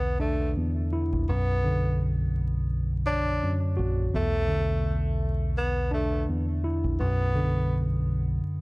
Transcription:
0.00 0.53 B1 loud
0.00 0.57 E2 loud
0.00 1.27 D3 medium
0.00 0.18 B3 medium
0.20 0.53 A3 medium
0.20 1.28 D4 medium
0.58 1.29 E2 medium
0.93 1.28 E4 medium
1.13 1.25 A#1 medium
1.29 3.39 B1 loud
1.29 3.41 F#2 medium
1.29 2.16 B3 medium
1.64 4.14 D3 medium
3.06 3.58 D4 medium
3.06 4.14 C#5 medium
3.43 4.14 F#2 medium
3.77 4.07 A#1 medium
3.77 4.13 F#4 medium
4.14 6.25 B1 loud
4.14 6.28 E2 loud
4.14 5.02 A3 loud
4.48 6.99 D3 medium
5.58 5.90 B3 medium
5.91 6.25 A3 medium
5.91 6.99 D4 medium
6.29 7.00 E2 medium
6.64 7.00 E4 medium
6.84 6.97 A#1 medium
7.00 8.39 B1 loud
7.00 8.61 F#2 medium
7.00 7.87 B3 loud
7.35 8.61 D3 medium

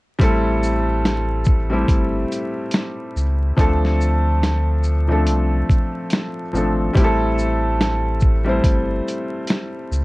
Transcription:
0.19 1.85 A1 loud
0.19 1.55 G3 loud
0.19 1.56 A3 medium
0.19 1.56 C4 medium
0.19 1.57 E4 loud
0.19 kick medium
0.19 closed hi-hat medium
0.23 1.57 A4 loud
0.63 shaker soft
1.05 snare loud
1.05 closed hi-hat medium
1.45 kick medium
1.45 shaker soft
1.70 3.22 G3 medium
1.70 3.22 A3 medium
1.70 3.23 C4 medium
1.70 3.23 E4 medium
1.70 3.24 G4 medium
1.88 2.25 G1 medium
1.88 kick medium
1.88 closed hi-hat medium
2.32 closed hi-hat soft
2.32 shaker soft
2.71 snare loud
2.71 closed hi-hat medium
3.16 3.52 C#2 medium
3.16 shaker soft
3.56 5.28 D2 medium
3.56 4.93 F3 loud
3.56 4.93 A3 loud
3.56 4.94 C4 medium
3.56 4.94 D4 medium
3.56 4.95 A4 loud
3.56 kick loud
3.56 closed hi-hat medium
3.85 snare soft
4.01 shaker soft
4.43 snare loud
4.43 closed hi-hat medium
4.84 shaker soft
5.08 6.42 F3 medium
5.08 6.42 A3 medium
5.08 6.43 C4 medium
5.08 6.43 D4 medium
5.08 6.44 A4 medium
5.27 5.63 C2 medium
5.27 closed hi-hat medium
5.69 kick medium
5.69 closed hi-hat soft
5.69 shaker soft
6.10 snare loud
6.10 closed hi-hat medium
6.53 6.90 G#1 medium
6.53 6.92 F3 medium
6.53 6.93 A3 medium
6.53 6.93 C4 medium
6.53 6.94 D4 medium
6.53 6.94 A4 medium
6.53 shaker soft
6.93 8.61 A1 loud
6.93 8.30 G3 loud
6.93 8.31 A3 loud
6.93 8.32 C4 medium
6.93 8.32 E4 loud
6.93 7.04 G4 loud
6.93 kick loud
6.93 closed hi-hat medium
7.04 8.36 A4 loud
7.39 shaker soft
7.81 snare medium
7.81 closed hi-hat medium
8.21 kick medium
8.21 shaker soft
8.44 9.97 G3 medium
8.44 9.98 A3 medium
8.44 9.98 C4 medium
8.44 9.99 E4 medium
8.49 9.99 C5 medium
8.64 9.01 G1 medium
8.64 kick medium
8.64 closed hi-hat medium
9.08 closed hi-hat soft
9.08 shaker soft
9.47 snare loud
9.47 closed hi-hat medium
9.91 10.05 C#2 medium
9.91 shaker soft

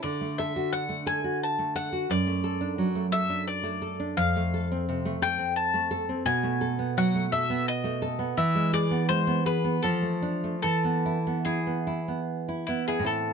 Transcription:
0.03 2.06 D3 medium
0.03 0.35 D5 medium
0.21 0.49 A3 soft
0.38 0.56 A4 medium
0.38 0.70 E5 medium
0.56 0.83 F#4 soft
0.73 1.00 D4 soft
0.73 1.05 F#5 medium
0.89 1.17 A3 soft
1.07 1.24 A4 medium
1.07 1.39 G#5 medium
1.24 1.75 F#4 soft
1.43 1.74 A5 medium
1.59 1.86 A3 soft
1.75 1.92 A4 soft
1.75 2.07 F#5 medium
1.93 2.10 F#4 soft
2.10 4.14 F#2 medium
2.10 3.09 D5 medium
2.27 2.55 A3 soft
2.44 2.72 A4 medium
2.61 2.89 D4 medium
2.78 3.06 F#3 medium
2.95 3.23 A3 soft
3.12 3.40 A4 medium
3.12 3.44 E5 medium
3.30 3.86 D4 soft
3.48 4.14 D5 medium
3.63 3.92 A3 medium
3.82 4.10 A4 medium
4.00 4.17 D4 medium
4.17 6.22 F2 medium
4.17 5.18 F5 medium
4.36 4.64 A3 medium
4.54 4.81 A4 medium
4.72 4.99 C4 medium
4.89 5.16 C3 medium
5.05 5.32 A3 medium
5.22 5.49 A4 medium
5.22 5.54 G5 loud
5.39 5.94 C4 medium
5.56 6.22 A5 medium
5.74 6.02 A3 medium
5.91 6.19 A4 medium
6.09 6.27 C4 medium
6.25 8.34 B2 medium
6.25 6.93 G#5 loud
6.43 6.72 A3 medium
6.61 6.90 A4 medium
6.79 7.07 B3 medium
6.97 7.25 F#3 medium
6.97 7.30 F#5 loud
7.15 7.43 A3 medium
7.32 7.61 A4 medium
7.32 7.65 E5 loud
7.50 8.06 B3 medium
7.68 8.34 D#5 loud
7.84 8.13 A3 medium
8.02 8.31 A4 medium
8.19 8.37 B3 medium
8.37 9.79 E3 medium
8.37 8.71 E5 medium
8.55 8.84 G#3 medium
8.73 9.02 G#4 medium
8.73 9.07 D5 medium
8.91 9.20 B3 medium
9.09 9.39 G#3 medium
9.09 9.43 C5 loud
9.27 9.57 B3 medium
9.46 9.76 G#4 medium
9.46 9.81 B4 medium
9.64 9.83 B3 medium
9.83 10.61 F3 medium
9.83 10.58 A4 medium
10.02 10.34 A3 medium
10.22 10.55 D4 medium
10.44 10.64 A3 soft
10.62 13.03 E3 medium
10.62 11.41 A4 medium
10.84 11.17 B3 medium
11.06 11.38 E4 medium
11.27 11.59 B3 medium
11.45 11.78 E4 medium
11.45 12.64 G#4 medium
11.67 11.99 B3 medium
11.87 12.19 E4 medium
12.08 12.67 B3 medium
12.49 12.80 E4 soft
12.67 12.99 B3 medium
12.67 12.86 E4 medium
12.88 13.03 E4 medium
12.88 13.05 G#4 medium
12.99 13.33 A2 medium
12.99 13.33 C4 soft
13.04 13.33 E4 soft
13.04 13.33 A4 medium

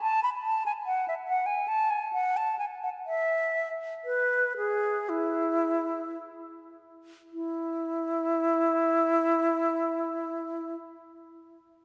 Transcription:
0.02 0.22 A5 medium
0.23 0.29 B5 medium
0.44 0.64 A5 medium
0.66 0.72 G#5 medium
0.86 1.06 F#5 medium
1.08 1.14 E5 medium
1.28 1.48 F#5 medium
1.46 1.69 G#5 medium
1.68 1.92 A5 medium
1.90 2.12 G#5 medium
2.13 2.38 F#5 medium
2.37 2.58 A5 medium
2.59 2.65 G#5 medium
2.83 2.89 F#5 soft
3.06 3.69 E5 medium
4.05 4.53 B4 medium
4.57 5.11 G#4 medium
5.09 6.18 E4 medium
7.33 10.75 E4 medium

